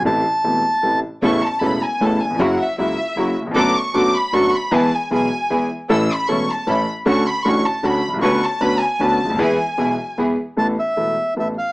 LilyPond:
<<
  \new Staff \with { instrumentName = "Violin section" } { \time 3/4 \key a \minor \tempo 4 = 154 r2. | \key a \major cis'''8 a''8 b''8 gis''8 a''8 gis''8 | fis''8 e''8 e''4. r8 | d'''8 cis'''8 d'''8 b''8 cis'''8 b''8 |
a''8 gis''8 gis''4. r8 | e'''8 b''8 cis'''8 a''8 b''8 r8 | cis'''8 b''8 cis'''8 a''8 b''8 r8 | cis'''8 a''8 b''8 gis''8 a''4 |
gis''2 r4 | \key c \major r2. | }
  \new Staff \with { instrumentName = "Bandoneon" } { \time 3/4 \key a \minor a''2~ a''8 r8 | \key a \major r2. | r2. | r2. |
r2. | r2. | r2. | r2. |
r2. | \key c \major a''8 e''4. e''8 f''8 | }
  \new Staff \with { instrumentName = "String section" } { \time 3/4 \key a \minor r2. | \key a \major <b cis' a'>8 r8 <b cis' a'>8 r8 <b cis' a'>8 r8 | <ais e' fis'>8 r8 <ais e' fis'>8 r8 <ais e' fis'>8 r8 | <b d' a'>8 r8 <b d' a'>8 r8 <b d' a'>8 r8 |
<b e' gis'>8 r8 <b e' gis'>8 r8 <b e' gis'>8 r8 | <cis' e' a'>8 r8 <cis' e' a'>8 r8 <cis' e' a'>8 r8 | <cis' d' fis'>8 r8 <cis' d' fis'>8 r8 <cis' d' fis'>8 r8 | <cis' d' b'>8 r8 <cis' d' b'>8 r8 <cis' d' b'>8 r8 |
<b e' gis'>8 r8 <b e' gis'>8 r8 <b e' gis'>8 r8 | \key c \major r2. | }
  \new Staff \with { instrumentName = "Grand piano" } { \clef bass \time 3/4 \key a \minor <a,, a, c e a e'>8 r8 <e,, e, c e a e'>8 r8 <a,, a, c e a e'>8 r8 | \key a \major <a,, a, cis a b e'>8 r8 <e,, e, cis a b e'>8 r8 <a,, a, cis a b e'>8 r32 dis,32 e,32 f,32 | <fis, cis fis ais e'>8 r8 <cis, cis fis ais e'>8 r8 <fis, cis fis ais e'>8 r32 dis,32 e,32 f,32 | <fis, d fis a b fis'>8 r8 <fis, d fis a b fis'>8 r8 <fis, d fis a b fis'>8 r8 |
<e, e gis b gis'>8 r8 <b,, b, e gis b gis'>8 r8 <e, e gis b gis'>8 r8 | <a,, a, e a cis' a'>8 r8 <e,, e, e a cis' a'>8 r8 <a,, a, e a cis' a'>8 r8 | <d, d a cis' fis'>8 r8 <a,, a, d a cis' fis'>8 r8 <d, d a cis' fis'>8 r32 b,,32 c,32 cis,32 | <d, d b cis' fis'>8 r8 <d, d b cis' fis'>8 r8 <d, d b cis' fis'>8 r32 cis,32 d,32 dis,32 |
<e, e gis b gis'>8 r8 <b,, b, e gis b gis'>8 r8 <e, e gis b gis'>8 r8 | \key c \major <a,, a, e a b a'>8 r8 <e,, e, e a b a'>8 r8 <a,, a, e a b a'>8 r8 | }
  \new Staff \with { instrumentName = "Upright bass" } { \clef bass \time 3/4 \key a \minor a,,16. r8 r32 e,,16. r8 r32 a,,16. r8 r32 | \key a \major a,,16. r8 r32 e,,16. r8 r32 a,,16. r8 r32 | fis,,16. r8 r32 cis,16. r8 r32 fis,,16. r8 r32 | fis,,16. r8 r32 fis,,16. r8 r32 fis,,16. r8 r32 |
e,16. r8 r32 b,,16. r8 r32 e,16. r8 r32 | a,,16. r8 r32 e,,16. r8 r32 a,,16. r8 r32 | d,16. r8 r32 a,,16. r8 r32 d,16. r16 b,,32 c,32 cis,32 | d,16. r8 r32 d,16. r8 r32 d,16. r16 cis,32 d,32 dis,32 |
e,16. r8 r32 b,,16. r8 r32 e,16. r8 r32 | \key c \major a,,16. r8 r32 e,,16. r8 r32 a,,16. r8 r32 | }
>>